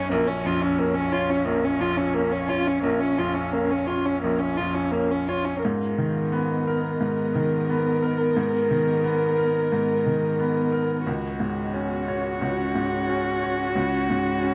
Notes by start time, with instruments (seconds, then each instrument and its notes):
Already playing: grand piano B1 F#2 C#4 C#5, violin C#4, ambient pad D#5
0.10 grand piano A#1, violin A#3, cello C#4, ambient pad C#4 F4 F5
0.28 violin C#4
0.45 grand piano F2, violin F4
0.62 violin C#4
0.79 violin A#3, grand piano C#4
0.95 violin C#4
1.12 violin F4, grand piano C#5
1.30 violin C#4
1.46 grand piano A#1, violin A#3
1.64 violin C#4
1.79 grand piano F2, violin F4
1.97 violin C#4
2.14 violin A#3, grand piano C#4
2.32 violin C#4
2.49 violin F4, grand piano C#5
2.67 violin C#4
2.83 grand piano A#1, violin A#3
3.00 violin C#4
3.18 grand piano F2, violin F4
3.34 violin C#4
3.52 violin A#3, grand piano C#4
3.71 violin C#4
3.87 violin F4, grand piano C#5
4.06 violin C#4
4.23 grand piano A#1, violin A#3
4.39 violin C#4
4.57 grand piano F2, violin F4
4.74 violin C#4
4.91 violin A#3, grand piano C#4
5.11 violin C#4
5.28 violin F4, grand piano C#5
5.45 violin C#4
5.62 grand piano G#2, ambient pad B3 A#4 D#5, cello B3, violin A#4
5.98 grand piano D#3
6.32 grand piano B3
6.67 grand piano A#4
7.01 grand piano G#2
7.35 grand piano D#3
7.69 grand piano B3
8.03 grand piano A#4
8.36 grand piano G#2
8.71 grand piano D#3
9.04 grand piano B3
9.38 grand piano A#4
9.72 grand piano G#2
10.06 grand piano D#3
10.40 grand piano B3
10.72 grand piano A#4
11.05 grand piano C#2, cello C#4, ambient pad C#4 F#4 C#5, violin F#4
11.40 grand piano G#2
11.74 grand piano C#4
12.08 grand piano C#5
12.42 grand piano C#2
12.75 grand piano G#2
13.08 grand piano C#4
13.43 grand piano C#5
13.75 grand piano C#2
14.10 grand piano G#2
14.42 grand piano C#4